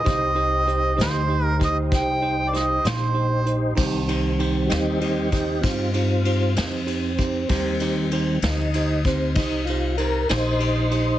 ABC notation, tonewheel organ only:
X:1
M:12/8
L:1/8
Q:3/8=64
K:Cm
V:1 name="Tonewheel organ"
[EGc]12 | z3 [E^FG] [EG] [EG] [C=F] [CF] [CF] C3- | C z2 E2 C E F B [Ec]3 |]
V:2 name="Tonewheel organ" clef=bass
z12 | [E,G,C]4 [E,G,C] z6 z | [E,G,C]3 z8 z |]